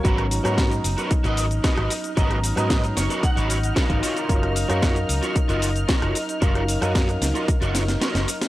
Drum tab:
HH |xxoxxxoxxxoxxxox|xxoxxxoxxxoxxxox|xxoxxxoxxxoxxxox|xxoxxxoxxxoxxxox|
SH |x-xxxxxxxxxxx-xx|x-xxxxxxxxxxx-xx|x-xxxxxxxxxxx-xx|x-xxxxxxxxxxxxxx|
SD |-r-ro-------or--|-r-ro-o-----o---|-r-ro-------or--|-r-ro-o---oooo-o|
BD |o---o---o---o---|o---o---o---oo--|o---o---o---o---|o---o---o-------|